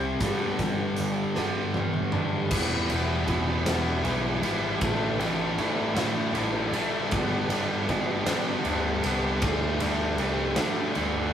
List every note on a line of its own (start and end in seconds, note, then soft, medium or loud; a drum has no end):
0.00 0.20 C2 medium
0.00 0.20 C3 medium
0.00 0.21 C3 medium
0.00 0.22 G3 medium
0.00 1.76 G3 medium
0.00 0.19 C4 medium
0.00 0.21 C4 medium
0.00 0.18 E4 medium
0.20 0.44 G1 medium
0.20 1.34 G2 medium
0.20 2.13 G2 medium
0.20 1.34 D3 medium
0.20 1.33 G3 loud
0.20 2.12 B3 medium
0.20 2.12 D4 medium
0.20 kick loud
0.20 closed hi-hat medium
0.59 0.83 G1 medium
0.59 0.96 D3 medium
0.59 kick medium
0.59 closed hi-hat medium
0.96 1.22 G1 medium
0.96 2.13 D3 medium
0.96 closed hi-hat medium
1.35 1.61 G1 medium
1.35 2.50 G2 medium
1.35 2.49 D3 medium
1.35 2.49 G3 medium
1.35 2.52 B3 medium
1.35 snare medium
1.74 1.99 G1 medium
1.74 2.53 G3 medium
1.74 high tom medium
1.94 mid tom medium
2.12 2.51 F#1 medium
2.12 2.52 D3 medium
2.12 2.51 D3 medium
2.12 2.50 G3 medium
2.12 2.50 B3 medium
2.12 2.49 D4 medium
2.12 mid tom medium
2.16 2.51 G2 medium
2.50 2.89 E1 medium
2.50 3.27 E3 medium
2.50 2.90 G3 medium
2.50 2.90 B3 loud
2.50 2.89 E4 medium
2.50 kick loud
2.50 crash loud
2.90 3.27 E1 medium
2.90 3.27 G3 medium
2.90 3.28 B3 medium
2.90 3.29 E4 medium
2.90 ride medium
3.27 3.66 E1 medium
3.27 4.02 E3 medium
3.27 3.66 G3 medium
3.27 3.65 B3 medium
3.27 3.64 E4 medium
3.27 kick medium
3.27 ride medium
3.66 4.03 E1 medium
3.66 4.03 G3 medium
3.66 4.04 B3 medium
3.66 4.04 E4 medium
3.66 snare loud
3.66 ride medium
3.70 4.03 E3 medium
4.04 4.41 B1 medium
4.04 4.79 E3 medium
4.04 4.43 G3 medium
4.04 4.42 B3 medium
4.04 4.41 E4 medium
4.04 ride medium
4.41 4.80 G#1 medium
4.41 4.80 G3 medium
4.41 4.80 B3 medium
4.41 4.79 E4 medium
4.41 ride medium
4.81 5.18 A1 medium
4.81 5.58 A2 loud
4.81 5.56 D3 medium
4.81 5.20 E3 medium
4.81 5.20 A3 loud
4.81 5.19 D4 loud
4.81 5.18 E4 loud
4.81 kick loud
4.81 ride loud
5.19 5.57 A1 medium
5.19 5.57 E3 medium
5.19 5.58 A3 medium
5.19 5.97 D4 medium
5.19 5.58 E4 medium
5.19 ride medium
5.57 5.94 G1 medium
5.57 6.32 D3 medium
5.57 5.95 E3 medium
5.57 5.95 A3 medium
5.57 5.93 E4 medium
5.57 ride medium
5.95 6.33 A2 medium
5.95 6.33 E3 medium
5.95 6.34 A3 medium
5.95 6.39 D4 medium
5.95 6.34 E4 medium
5.95 snare loud
5.95 ride medium
6.00 6.76 A2 medium
6.00 6.35 D3 medium
6.33 6.71 A1 medium
6.33 7.09 D3 medium
6.33 6.73 E3 medium
6.33 6.73 A3 medium
6.33 6.71 E4 medium
6.33 ride medium
6.39 6.74 D4 medium
6.72 7.12 G1 medium
6.72 7.10 E3 medium
6.72 7.12 A3 medium
6.72 7.14 D4 medium
6.72 7.09 E4 medium
6.72 ride medium
7.10 7.49 G1 medium
7.10 7.88 G2 loud
7.10 7.87 D3 medium
7.10 7.51 G3 loud
7.10 7.49 B3 loud
7.10 7.49 D4 loud
7.10 kick loud
7.10 ride loud
7.49 7.87 G1 medium
7.49 7.88 G3 medium
7.49 7.88 B3 medium
7.49 7.89 D4 medium
7.49 ride medium
7.88 8.26 G1 medium
7.88 8.63 D3 medium
7.88 8.27 G3 medium
7.88 8.26 B3 medium
7.88 8.25 D4 medium
7.88 kick medium
7.88 ride medium
8.26 8.64 G1 medium
8.26 8.65 G3 medium
8.26 8.65 B3 medium
8.26 8.65 D4 medium
8.26 snare loud
8.26 ride loud
8.31 9.06 G2 medium
8.31 8.66 D3 medium
8.65 9.02 D2 medium
8.65 9.40 D3 medium
8.65 9.05 G3 medium
8.65 9.04 B3 medium
8.65 9.02 D4 medium
8.65 ride medium
9.03 9.41 C2 medium
9.03 9.42 G3 medium
9.03 9.41 B3 medium
9.03 9.40 D4 medium
9.03 ride medium
9.41 9.80 D2 medium
9.41 10.18 D3 loud
9.41 9.82 G3 loud
9.41 9.80 A3 loud
9.41 9.79 D4 loud
9.41 kick loud
9.41 ride loud
9.80 10.17 D2 medium
9.80 10.19 G3 medium
9.80 10.19 A3 medium
9.80 10.19 D4 medium
9.80 ride medium
10.18 10.56 C2 medium
10.18 10.94 D3 medium
10.18 10.58 G3 medium
10.18 10.57 A3 medium
10.18 10.56 D4 medium
10.18 ride medium
10.56 10.95 D3 medium
10.56 10.94 D3 medium
10.56 10.95 G3 medium
10.56 10.95 A3 medium
10.56 10.96 D4 medium
10.56 snare loud
10.56 ride medium
10.95 11.33 D2 medium
10.95 11.33 D3 medium
10.95 11.33 G3 medium
10.95 11.33 A3 medium
10.95 11.33 D4 medium
10.95 ride medium